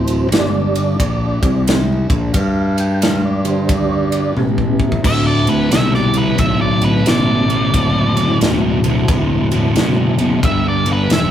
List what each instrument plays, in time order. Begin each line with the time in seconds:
Already playing: fingered electric bass D1, tonewheel organ E3 F#3 C4 C5
0.07 ride
0.31 fingered electric bass G1, tonewheel organ D3 G3 D4 D5, snare, ride
0.75 ride
0.99 fingered electric bass A#1, kick, ride
1.40 fingered electric bass C2, tonewheel organ C3 G3 C4, kick, ride
1.67 snare, ride
2.10 fingered electric bass A#1, kick, ride
2.33 fingered electric bass G2, tonewheel organ F5, kick, ride
2.78 tonewheel organ G5, ride
3.02 tonewheel organ F5, snare, ride
3.25 tonewheel organ D5
3.44 tonewheel organ D3 G3 D4 C5, ride
3.69 tonewheel organ D5, kick, ride
3.88 tonewheel organ C#5 D5
4.12 ride
4.37 fingered electric bass A1, tonewheel organ C#3 G3 B3, high tom
4.58 kick
4.80 kick
4.92 kick
5.03 fingered electric bass D2, distorted electric guitar D2 A2, tonewheel organ E4 F#4 A4 C5, lead electric guitar E5, kick, crash
5.27 lead electric guitar D5
5.47 distorted electric guitar D2 A2, lead electric guitar B4, ride
5.71 fingered electric bass C2, distorted electric guitar D2 B2, lead electric guitar E5, snare, ride
5.94 lead electric guitar D5, snare
6.14 distorted electric guitar D2 B2, ride
6.18 lead electric guitar B4
6.38 fingered electric bass B1, distorted electric guitar D2 A2, lead electric guitar E5, kick, ride
6.61 lead electric guitar D5
6.81 distorted electric guitar D2 A2, lead electric guitar B4, ride
7.06 fingered electric bass A1, distorted electric guitar D2 B2, lead electric guitar D5, snare, ride
7.48 distorted electric guitar D2 B2, ride
7.71 fingered electric bass F#1, distorted electric guitar D2 A2, tonewheel organ E4 F#4 A4 C5, kick, ride
8.16 distorted electric guitar D2 A2, ride
8.40 fingered electric bass D1, distorted electric guitar D2 B2, snare, ride
8.84 distorted electric guitar D2 B2, ride
9.08 fingered electric bass E1, distorted electric guitar D2 A2, kick, ride
9.51 distorted electric guitar D2 A2, ride
9.75 fingered electric bass F#1, distorted electric guitar D2 B2, snare, ride
10.18 distorted electric guitar D2 B2, ride
10.41 fingered electric bass G1, distorted electric guitar G2 D3, tonewheel organ D4 A4 B4 F5, lead electric guitar E5, kick, ride
10.68 lead electric guitar D5
10.86 distorted electric guitar G2 D3, ride
10.93 lead electric guitar B4
11.10 fingered electric bass E1, distorted electric guitar G2 E3, lead electric guitar E5, snare, ride